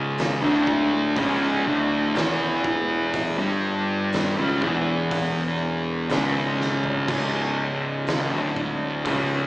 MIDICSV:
0, 0, Header, 1, 4, 480
1, 0, Start_track
1, 0, Tempo, 986842
1, 1528, Time_signature, 4, 2, 24, 8
1, 4605, End_track
2, 0, Start_track
2, 0, Title_t, "Distorted electric guitar"
2, 0, Program_c, 0, 30
2, 0, Note_on_c, 0, 37, 100
2, 0, Note_on_c, 0, 49, 114
2, 201, Note_off_c, 0, 37, 0
2, 203, Note_off_c, 0, 49, 0
2, 207, Note_on_c, 0, 38, 86
2, 212, Note_on_c, 0, 50, 97
2, 560, Note_off_c, 0, 38, 0
2, 562, Note_off_c, 0, 50, 0
2, 568, Note_on_c, 0, 37, 94
2, 573, Note_on_c, 0, 49, 110
2, 800, Note_off_c, 0, 37, 0
2, 803, Note_off_c, 0, 49, 0
2, 811, Note_on_c, 0, 38, 103
2, 815, Note_on_c, 0, 50, 101
2, 1051, Note_off_c, 0, 38, 0
2, 1051, Note_on_c, 0, 40, 86
2, 1057, Note_off_c, 0, 50, 0
2, 1057, Note_on_c, 0, 52, 98
2, 1642, Note_off_c, 0, 40, 0
2, 1646, Note_off_c, 0, 52, 0
2, 1647, Note_on_c, 0, 43, 84
2, 1654, Note_on_c, 0, 55, 98
2, 2121, Note_off_c, 0, 43, 0
2, 2124, Note_off_c, 0, 55, 0
2, 2130, Note_on_c, 0, 37, 86
2, 2134, Note_on_c, 0, 49, 98
2, 2242, Note_off_c, 0, 37, 0
2, 2244, Note_off_c, 0, 49, 0
2, 2252, Note_on_c, 0, 40, 88
2, 2257, Note_on_c, 0, 52, 107
2, 2963, Note_off_c, 0, 40, 0
2, 2966, Note_off_c, 0, 52, 0
2, 2969, Note_on_c, 0, 37, 87
2, 2973, Note_on_c, 0, 49, 112
2, 3439, Note_off_c, 0, 37, 0
2, 3442, Note_off_c, 0, 49, 0
2, 3444, Note_on_c, 0, 37, 93
2, 3448, Note_on_c, 0, 49, 116
2, 4039, Note_off_c, 0, 37, 0
2, 4040, Note_off_c, 0, 49, 0
2, 4047, Note_on_c, 0, 38, 87
2, 4051, Note_on_c, 0, 50, 94
2, 4400, Note_off_c, 0, 38, 0
2, 4402, Note_off_c, 0, 50, 0
2, 4402, Note_on_c, 0, 37, 101
2, 4409, Note_on_c, 0, 49, 93
2, 4605, Note_off_c, 0, 37, 0
2, 4605, Note_off_c, 0, 49, 0
2, 4605, End_track
3, 0, Start_track
3, 0, Title_t, "Picked electric bass"
3, 0, Program_c, 1, 34
3, 0, Note_on_c, 1, 25, 90
3, 187, Note_off_c, 1, 25, 0
3, 207, Note_on_c, 1, 26, 86
3, 548, Note_off_c, 1, 26, 0
3, 567, Note_on_c, 1, 25, 94
3, 791, Note_off_c, 1, 25, 0
3, 808, Note_on_c, 1, 26, 94
3, 1031, Note_off_c, 1, 26, 0
3, 1046, Note_on_c, 1, 28, 101
3, 1628, Note_off_c, 1, 28, 0
3, 1648, Note_on_c, 1, 31, 95
3, 2109, Note_off_c, 1, 31, 0
3, 2126, Note_on_c, 1, 25, 82
3, 2239, Note_off_c, 1, 25, 0
3, 2246, Note_on_c, 1, 28, 89
3, 2948, Note_off_c, 1, 28, 0
3, 2964, Note_on_c, 1, 25, 108
3, 3426, Note_off_c, 1, 25, 0
3, 3446, Note_on_c, 1, 25, 100
3, 4027, Note_off_c, 1, 25, 0
3, 4044, Note_on_c, 1, 26, 93
3, 4386, Note_off_c, 1, 26, 0
3, 4403, Note_on_c, 1, 25, 94
3, 4605, Note_off_c, 1, 25, 0
3, 4605, End_track
4, 0, Start_track
4, 0, Title_t, "Drums"
4, 89, Note_on_c, 9, 46, 60
4, 97, Note_on_c, 9, 38, 118
4, 137, Note_off_c, 9, 46, 0
4, 146, Note_off_c, 9, 38, 0
4, 327, Note_on_c, 9, 36, 87
4, 375, Note_off_c, 9, 36, 0
4, 565, Note_on_c, 9, 46, 55
4, 567, Note_on_c, 9, 36, 114
4, 613, Note_off_c, 9, 46, 0
4, 615, Note_off_c, 9, 36, 0
4, 1048, Note_on_c, 9, 46, 61
4, 1056, Note_on_c, 9, 38, 112
4, 1096, Note_off_c, 9, 46, 0
4, 1105, Note_off_c, 9, 38, 0
4, 1286, Note_on_c, 9, 36, 82
4, 1335, Note_off_c, 9, 36, 0
4, 1525, Note_on_c, 9, 46, 62
4, 1527, Note_on_c, 9, 36, 106
4, 1573, Note_off_c, 9, 46, 0
4, 1575, Note_off_c, 9, 36, 0
4, 2007, Note_on_c, 9, 46, 59
4, 2016, Note_on_c, 9, 38, 108
4, 2056, Note_off_c, 9, 46, 0
4, 2064, Note_off_c, 9, 38, 0
4, 2246, Note_on_c, 9, 36, 89
4, 2295, Note_off_c, 9, 36, 0
4, 2487, Note_on_c, 9, 36, 122
4, 2489, Note_on_c, 9, 46, 64
4, 2536, Note_off_c, 9, 36, 0
4, 2538, Note_off_c, 9, 46, 0
4, 2965, Note_on_c, 9, 46, 60
4, 2973, Note_on_c, 9, 38, 102
4, 3013, Note_off_c, 9, 46, 0
4, 3022, Note_off_c, 9, 38, 0
4, 3214, Note_on_c, 9, 38, 63
4, 3262, Note_off_c, 9, 38, 0
4, 3325, Note_on_c, 9, 43, 89
4, 3374, Note_off_c, 9, 43, 0
4, 3444, Note_on_c, 9, 49, 97
4, 3446, Note_on_c, 9, 36, 112
4, 3493, Note_off_c, 9, 49, 0
4, 3494, Note_off_c, 9, 36, 0
4, 3925, Note_on_c, 9, 46, 59
4, 3934, Note_on_c, 9, 38, 113
4, 3973, Note_off_c, 9, 46, 0
4, 3982, Note_off_c, 9, 38, 0
4, 4166, Note_on_c, 9, 36, 83
4, 4215, Note_off_c, 9, 36, 0
4, 4405, Note_on_c, 9, 36, 108
4, 4405, Note_on_c, 9, 46, 63
4, 4454, Note_off_c, 9, 36, 0
4, 4454, Note_off_c, 9, 46, 0
4, 4605, End_track
0, 0, End_of_file